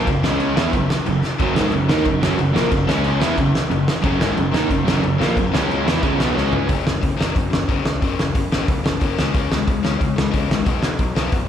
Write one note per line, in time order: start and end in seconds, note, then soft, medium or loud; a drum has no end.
0.06 0.22 F#1 medium
0.06 0.21 F#2 medium
0.06 0.21 C#3 medium
0.06 kick loud
0.06 crash medium
0.23 0.55 C#2 loud
0.23 0.56 C#3 medium
0.23 0.56 G#3 medium
0.23 0.57 C#4 medium
0.23 snare loud
0.40 crash medium
0.56 0.72 E2 medium
0.56 0.73 E3 medium
0.56 0.73 B3 medium
0.56 0.73 E4 loud
0.56 snare loud
0.73 0.89 F#1 medium
0.73 0.87 F#2 medium
0.73 0.87 C#3 medium
0.73 kick medium
0.73 crash medium
0.90 snare loud
1.06 1.22 F#1 medium
1.06 1.20 F#2 medium
1.06 1.20 C#3 medium
1.06 crash medium
1.23 snare medium
1.39 1.55 F#1 medium
1.39 1.55 F#2 loud
1.39 1.56 C#3 loud
1.39 1.56 F#3 loud
1.39 kick loud
1.39 crash medium
1.56 1.72 G#1 loud
1.56 1.72 G#2 medium
1.56 1.72 D#3 medium
1.56 1.73 G#3 loud
1.56 snare loud
1.72 1.89 F#1 medium
1.72 1.86 F#2 medium
1.72 1.86 C#3 medium
1.72 crash medium
1.88 2.05 D#2 medium
1.88 2.05 D#3 medium
1.88 2.05 A#3 loud
1.88 2.05 D#4 loud
1.88 snare loud
2.05 2.21 F#1 medium
2.05 2.19 F#2 medium
2.05 2.19 C#3 medium
2.05 kick medium
2.05 crash medium
2.23 2.38 F#1 medium
2.23 2.38 F#2 medium
2.23 2.39 C#3 medium
2.23 2.39 F#3 medium
2.23 snare loud
2.39 2.54 F#1 medium
2.39 2.52 F#2 medium
2.39 2.53 C#3 medium
2.39 crash medium
2.54 2.71 A#1 medium
2.54 2.71 A#2 medium
2.54 2.71 F3 medium
2.54 2.72 A#3 loud
2.54 snare loud
2.71 2.87 F#1 medium
2.71 2.85 F#2 medium
2.71 2.85 C#3 medium
2.71 kick loud
2.71 crash medium
2.87 3.19 C#2 loud
2.87 3.19 C#3 loud
2.87 3.20 G#3 loud
2.87 3.20 C#4 loud
2.87 snare loud
3.04 crash medium
3.20 3.36 E2 medium
3.20 3.37 E3 medium
3.20 3.37 B3 medium
3.20 3.37 E4 medium
3.20 snare loud
3.36 3.53 F#1 medium
3.36 3.50 F#2 medium
3.36 3.51 C#3 medium
3.36 kick medium
3.36 crash medium
3.55 snare loud
3.71 3.86 F#1 medium
3.71 3.84 F#2 medium
3.71 3.84 C#3 medium
3.71 crash medium
3.88 snare loud
4.02 4.20 F#1 loud
4.02 4.18 F#2 medium
4.02 4.19 C#3 loud
4.02 4.20 F#3 loud
4.02 kick loud
4.02 crash medium
4.19 4.36 G#1 loud
4.19 4.36 G#2 loud
4.19 4.36 D#3 loud
4.19 4.36 G#3 loud
4.19 snare loud
4.36 4.53 F#1 medium
4.36 4.50 F#2 medium
4.36 4.50 C#3 medium
4.36 crash medium
4.52 4.69 D#2 medium
4.52 4.69 D#3 medium
4.52 4.69 A#3 medium
4.52 4.69 D#4 loud
4.52 snare loud
4.69 4.86 F#1 medium
4.69 4.83 F#2 medium
4.69 4.83 C#3 medium
4.69 kick medium
4.69 crash medium
4.86 5.02 F#1 medium
4.86 5.02 F#2 medium
4.86 5.02 C#3 loud
4.86 5.03 F#3 loud
4.86 snare loud
5.03 5.19 F#1 medium
5.03 5.16 F#2 medium
5.03 5.16 C#3 medium
5.03 crash medium
5.18 5.36 A#1 loud
5.18 5.35 A#2 medium
5.18 5.36 F3 medium
5.18 5.36 A#3 loud
5.18 snare loud
5.36 5.52 F#1 medium
5.36 5.49 F#2 medium
5.36 5.50 C#3 medium
5.36 kick loud
5.36 crash medium
5.52 5.84 C#2 medium
5.52 5.84 C#3 medium
5.52 5.85 G#3 loud
5.52 5.85 C#4 loud
5.52 snare loud
5.71 crash medium
5.85 6.02 E2 medium
5.85 6.01 E3 medium
5.85 6.02 B3 loud
5.85 6.02 E4 medium
5.85 snare loud
6.01 6.18 C#2 medium
6.01 6.18 C#3 medium
6.01 6.18 G#3 medium
6.01 6.19 C#4 loud
6.01 kick loud
6.01 crash medium
6.18 6.35 B1 loud
6.18 6.33 B2 medium
6.18 6.34 F#3 loud
6.18 6.35 B3 loud
6.18 snare loud
6.34 6.67 C#2 medium
6.34 6.66 C#3 medium
6.34 6.68 G#3 medium
6.34 6.68 C#4 loud
6.34 snare medium
6.53 floor tom medium
6.67 6.81 F#1 medium
6.67 6.83 F#2 medium
6.67 6.83 C#3 medium
6.67 6.84 F#3 medium
6.67 kick loud
6.67 open hi-hat medium
6.84 6.97 F#1 medium
6.84 7.00 F#2 medium
6.84 7.00 C#3 medium
6.84 snare loud
7.01 7.15 F#1 medium
7.01 7.15 F#2 medium
7.01 7.16 C#3 medium
7.01 kick loud
7.01 open hi-hat medium
7.17 7.30 F#1 medium
7.17 7.32 F#2 medium
7.17 7.32 C#3 medium
7.17 7.34 F#3 loud
7.17 snare loud
7.34 7.49 F#2 medium
7.34 7.47 F#2 medium
7.34 7.49 C#3 medium
7.34 kick loud
7.34 open hi-hat medium
7.50 7.65 F#1 medium
7.50 7.66 F#2 medium
7.50 7.66 C#3 medium
7.50 snare loud
7.68 7.80 F#1 medium
7.68 7.82 F#2 medium
7.68 7.83 C#3 medium
7.68 7.84 F#3 loud
7.68 kick loud
7.68 open hi-hat soft
7.84 7.97 C#2 medium
7.84 7.99 F#2 medium
7.84 7.99 C#3 medium
7.84 snare loud
8.01 8.14 F#1 medium
8.01 8.17 F#2 medium
8.01 8.17 C#3 loud
8.01 8.18 F#3 medium
8.01 kick loud
8.01 open hi-hat medium
8.18 8.29 F#1 medium
8.18 8.33 F#2 medium
8.18 8.34 C#3 medium
8.18 snare loud
8.35 8.47 F#1 medium
8.35 8.49 F#2 medium
8.35 8.50 C#3 medium
8.35 kick loud
8.35 open hi-hat medium
8.52 8.64 F#1 medium
8.52 8.67 F#2 medium
8.52 8.67 C#3 medium
8.52 8.68 F#3 loud
8.52 snare loud
8.68 8.80 C#2 medium
8.68 8.82 F#2 medium
8.68 8.83 C#3 medium
8.68 kick loud
8.68 open hi-hat medium
8.84 8.97 F#1 medium
8.84 8.99 F#2 medium
8.84 8.99 C#3 medium
8.84 snare loud
9.00 9.13 F#1 loud
9.00 9.16 F#2 medium
9.00 9.16 C#3 medium
9.00 9.16 F#3 loud
9.00 kick loud
9.00 open hi-hat medium
9.17 9.30 C#2 medium
9.17 9.33 C#3 medium
9.17 9.33 G#3 medium
9.17 9.33 C#4 loud
9.17 snare loud
9.34 9.46 C#2 medium
9.34 9.49 C#3 medium
9.34 9.50 G#3 medium
9.34 9.50 C#4 medium
9.34 kick loud
9.34 open hi-hat medium
9.51 9.63 C#2 medium
9.51 9.65 C#3 medium
9.51 9.65 G#3 medium
9.51 snare loud
9.67 9.79 C#2 medium
9.67 9.82 C#3 medium
9.67 9.82 G#3 medium
9.67 kick loud
9.67 open hi-hat medium
9.83 9.96 C#2 medium
9.83 9.98 C#3 medium
9.83 9.97 G#3 medium
9.83 9.99 C#4 loud
9.83 snare loud
9.99 10.14 C#3 medium
9.99 10.12 C#3 medium
9.99 10.14 G#3 medium
9.99 kick loud
9.99 open hi-hat medium
10.16 10.29 C#2 medium
10.16 10.30 C#3 medium
10.16 10.30 G#3 medium
10.16 snare loud
10.31 10.45 C#2 medium
10.31 10.48 C#3 medium
10.31 10.48 G#3 medium
10.31 10.48 C#4 medium
10.31 kick loud
10.31 open hi-hat medium
10.49 10.61 G#1 medium
10.49 10.64 C#3 medium
10.49 10.65 G#3 medium
10.49 snare loud
10.65 10.78 B1 medium
10.65 10.81 B2 medium
10.65 10.82 F#3 medium
10.65 10.82 B3 medium
10.65 kick loud
10.65 open hi-hat medium
10.83 10.95 B1 medium
10.83 10.98 B2 medium
10.83 10.98 F#3 medium
10.83 snare loud
10.99 11.11 B1 medium
10.99 11.14 B2 medium
10.99 11.15 F#3 medium
10.99 kick loud
10.99 open hi-hat medium
11.15 11.28 B1 medium
11.15 11.31 B2 medium
11.15 11.32 F#3 medium
11.15 11.32 B3 medium
11.15 snare loud
11.32 11.44 F#1 medium
11.32 11.47 B2 medium
11.32 11.47 F#3 medium
11.32 kick loud
11.32 open hi-hat medium